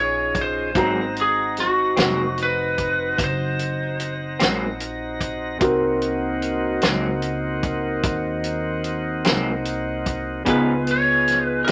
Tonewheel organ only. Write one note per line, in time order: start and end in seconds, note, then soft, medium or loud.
0.00 0.71 C#4 medium
0.00 0.71 D#4 medium
0.00 0.71 F4 medium
0.00 0.72 G#4 medium
0.76 5.58 C4 medium
0.76 5.58 D#4 medium
0.76 5.58 F#4 medium
0.76 5.58 A#5 medium
5.60 10.43 A#3 soft
5.60 10.43 C4 medium
5.60 10.43 D#4 soft
5.60 10.43 F#4 medium
10.47 11.71 B3 soft
10.47 11.71 D#4 medium
10.47 11.71 F4 medium
10.47 11.71 G#4 medium